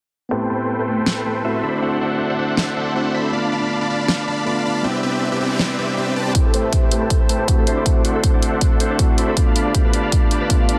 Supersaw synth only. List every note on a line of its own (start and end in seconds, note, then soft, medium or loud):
0.31 0.47 A3 medium
0.31 0.47 A4 medium
0.31 0.47 B4 medium
0.31 0.47 C5 medium
0.31 0.47 G5 medium
0.50 0.76 A3 medium
0.50 0.76 A4 medium
0.50 0.76 B4 medium
0.50 0.76 C5 medium
0.50 0.76 G5 loud
0.79 0.86 A3 medium
0.79 0.86 A4 medium
0.79 0.86 B4 medium
0.79 0.86 C5 medium
0.79 0.86 G5 loud
0.88 1.04 A3 medium
0.88 1.04 A4 medium
0.88 1.04 B4 medium
0.88 1.04 C5 medium
0.88 1.04 G5 loud
1.07 1.23 A3 medium
1.07 1.23 A4 medium
1.07 1.23 C5 medium
1.07 1.23 G5 medium
1.25 1.42 A3 medium
1.25 1.42 A4 medium
1.25 1.42 B4 medium
1.25 1.42 C5 medium
1.25 1.42 G5 medium
1.45 1.61 A3 medium
1.45 1.61 A4 medium
1.45 1.61 B4 medium
1.45 1.61 C5 medium
1.45 1.61 E5 medium
1.63 1.80 D4 medium
1.63 1.80 A4 medium
1.63 1.80 C5 medium
1.63 1.80 E5 medium
1.63 1.80 B5 medium
1.82 1.98 D4 medium
1.82 1.98 A4 medium
1.82 1.98 C5 medium
1.82 1.98 E5 medium
1.82 1.98 F#5 medium
2.01 2.28 D4 medium
2.01 2.28 A4 medium
2.01 2.28 C5 medium
2.01 2.28 E5 medium
2.01 2.28 F#5 loud
2.30 2.37 D4 medium
2.30 2.37 A4 medium
2.30 2.37 C5 medium
2.30 2.37 E5 medium
2.30 2.37 F#5 loud
2.39 2.55 D4 loud
2.39 2.55 A4 medium
2.39 2.55 C5 medium
2.39 2.55 E5 medium
2.39 2.56 F#5 loud
2.58 2.74 D4 medium
2.58 2.74 A4 medium
2.58 2.74 C5 medium
2.58 2.74 E5 medium
2.58 2.74 F#5 medium
2.77 2.93 D4 medium
2.77 2.93 A4 medium
2.77 2.93 C5 medium
2.77 2.93 E5 medium
2.77 2.93 F#5 medium
2.96 3.12 D4 medium
2.96 3.12 A4 medium
2.96 3.12 C5 medium
2.96 3.12 E5 medium
2.96 3.12 F#5 medium
3.14 3.31 D4 medium
3.14 3.31 A4 medium
3.14 3.31 C5 medium
3.14 3.31 E5 medium
3.14 3.31 B5 medium
3.33 3.49 D4 medium
3.33 3.49 D5 medium
3.33 3.49 F5 medium
3.33 3.49 A5 medium
3.33 3.49 B5 medium
3.52 3.78 D4 medium
3.52 3.78 D5 medium
3.52 3.78 F5 medium
3.52 3.78 A5 medium
3.52 3.78 B5 loud
3.81 3.88 D4 medium
3.81 3.88 D5 medium
3.81 3.88 F5 medium
3.81 3.88 A5 medium
3.81 3.88 B5 loud
3.90 4.06 D4 loud
3.90 4.07 D5 medium
3.90 4.07 F5 medium
3.90 4.06 A5 medium
3.90 4.07 B5 loud
4.09 4.25 D4 medium
4.09 4.25 D5 medium
4.09 4.25 F5 medium
4.09 4.25 A5 medium
4.09 4.25 B5 medium
4.27 4.44 D4 medium
4.27 4.44 D5 medium
4.27 4.44 F5 medium
4.27 4.44 A5 medium
4.27 4.44 B5 medium
4.46 4.63 D4 medium
4.46 4.63 D5 medium
4.46 4.63 F5 medium
4.46 4.63 A5 medium
4.46 4.63 B5 medium
4.65 4.82 D4 medium
4.65 4.82 D5 medium
4.65 4.82 F5 medium
4.65 4.82 A5 medium
4.65 4.82 B5 medium
4.84 5.00 C4 medium
4.84 5.00 G4 medium
4.84 5.00 B4 medium
4.84 5.00 D5 medium
4.84 5.00 E5 medium
5.03 5.29 C4 medium
5.03 5.29 G4 medium
5.03 5.29 B4 medium
5.03 5.29 D5 medium
5.03 5.29 E5 loud
5.32 5.39 C4 medium
5.32 5.39 G4 medium
5.32 5.39 B4 medium
5.32 5.39 D5 medium
5.32 5.39 E5 loud
5.41 5.57 C4 loud
5.41 5.57 G4 medium
5.41 5.57 B4 medium
5.41 5.57 D5 medium
5.41 5.57 E5 loud
5.60 5.76 C4 medium
5.60 5.76 G4 medium
5.60 5.76 B4 medium
5.60 5.76 D5 medium
5.60 5.76 E5 medium
5.78 5.95 C4 medium
5.78 5.95 G4 medium
5.78 5.95 B4 medium
5.78 5.95 D5 medium
5.78 5.95 E5 medium
5.97 6.14 C4 medium
5.97 6.14 G4 medium
5.97 6.14 B4 medium
5.97 6.14 D5 medium
5.97 6.14 E5 medium
6.16 6.33 C4 medium
6.16 6.33 G4 medium
6.16 6.33 B4 medium
6.16 6.33 D5 medium
6.16 6.33 A5 medium
6.35 6.51 A3 medium
6.35 6.51 A4 medium
6.35 6.51 B4 medium
6.35 6.51 C5 medium
6.35 6.51 G5 medium
6.54 6.80 A3 medium
6.54 6.80 A4 medium
6.54 6.80 B4 medium
6.54 6.80 C5 medium
6.54 6.80 G5 loud
6.83 6.89 A3 medium
6.83 6.89 A4 medium
6.83 6.89 B4 medium
6.83 6.89 C5 medium
6.83 6.89 G5 loud
6.92 7.08 A3 loud
6.92 7.08 A4 medium
6.92 7.08 B4 medium
6.92 7.08 C5 medium
6.92 7.08 G5 loud
7.10 7.27 A3 medium
7.10 7.27 A4 medium
7.29 7.46 A3 medium
7.29 7.46 A4 medium
7.29 7.46 B4 medium
7.29 7.46 C5 medium
7.29 7.46 G5 medium
7.48 7.65 A3 medium
7.48 7.65 A4 medium
7.48 7.65 B4 medium
7.48 7.65 C5 medium
7.48 7.65 E5 medium
7.67 7.84 D4 medium
7.67 7.84 A4 medium
7.67 7.84 C5 medium
7.67 7.84 E5 medium
7.67 7.84 B5 medium
7.86 8.02 D4 medium
7.86 8.02 A4 medium
7.86 8.02 F#5 medium
8.05 8.31 D4 medium
8.05 8.31 A4 medium
8.05 8.31 C5 medium
8.05 8.31 E5 medium
8.05 8.31 F#5 loud
8.34 8.40 D4 medium
8.34 8.40 A4 medium
8.34 8.40 C5 medium
8.34 8.40 E5 medium
8.34 8.40 F#5 loud
8.43 8.59 D4 loud
8.43 8.59 A4 medium
8.43 8.59 C5 medium
8.43 8.59 E5 medium
8.43 8.59 F#5 loud
8.62 8.78 D4 medium
8.62 8.78 F#5 loud
8.80 8.97 D4 medium
8.80 8.97 A4 medium
8.80 8.97 C5 medium
8.80 8.97 E5 medium
8.80 8.97 F#5 medium
8.99 9.16 A4 medium
8.99 9.16 C5 medium
8.99 9.16 E5 medium
8.99 9.16 F#5 medium
9.18 9.35 D4 medium
9.18 9.35 A4 medium
9.18 9.35 C5 medium
9.18 9.35 E5 medium
9.18 9.35 B5 medium
9.37 9.53 D4 medium
9.37 9.53 F5 medium
9.37 9.53 A5 medium
9.56 9.82 D4 medium
9.56 9.82 D5 medium
9.56 9.82 F5 medium
9.56 9.82 A5 medium
9.56 9.82 B5 loud
9.85 9.91 D4 medium
9.85 9.91 D5 medium
9.85 9.91 F5 medium
9.85 9.91 A5 medium
9.85 9.91 B5 loud
9.94 10.10 D4 loud
9.94 10.10 D5 medium
9.94 10.10 F5 medium
9.94 10.10 A5 medium
9.94 10.10 B5 loud
10.12 10.29 D4 medium
10.12 10.29 D5 medium
10.31 10.48 D4 medium
10.31 10.48 D5 medium
10.31 10.48 F5 medium
10.31 10.48 A5 medium
10.31 10.48 B5 medium
10.50 10.67 D4 medium
10.50 10.67 D5 medium
10.50 10.67 F5 medium
10.50 10.67 A5 medium
10.69 10.79 D4 medium
10.69 10.79 D5 medium
10.69 10.79 F5 medium
10.69 10.79 A5 medium
10.69 10.79 B5 medium